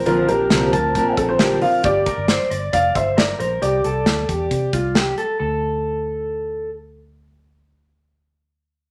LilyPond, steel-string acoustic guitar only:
\new Staff \with { instrumentName = "Steel-string acoustic guitar" } { \time 4/4 \key d \minor \tempo 4 = 135 <bes, d f c' d' bes'>8 <f c' d' bes'>8 <bes, d f c' d' bes'>8 <f c' d' bes'>8 <f c' d' bes'>4 <bes, d f c' d' bes'>8 <f c' d' bes'>8 | r1 | r1 | r1 |
r1 | }